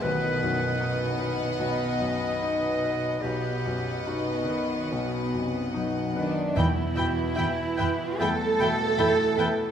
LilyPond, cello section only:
\new Staff \with { instrumentName = "Cello section" } { \clef bass \time 4/4 \key e \minor \tempo 4 = 74 b,1 | b,4 b,8 dis8 b,8 c8 b,8 <dis d'>8 | e'2 a'2 | }